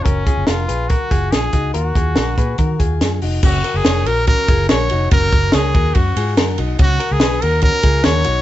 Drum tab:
CC |--------|--------|x-------|--------|
RD |--------|--------|-xxxxxxx|xxxxxxxx|
HH |xxxxxxxx|xxxxxxxo|--------|--------|
SD |--o---o-|--o---o-|--o---o-|--o---o-|
BD |oo--oo-o|-o-ooo--|o---oo--|oo-oo---|

CC |--------|
RD |xxxxxxxx|
HH |--------|
SD |--o---o-|
BD |o---oo--|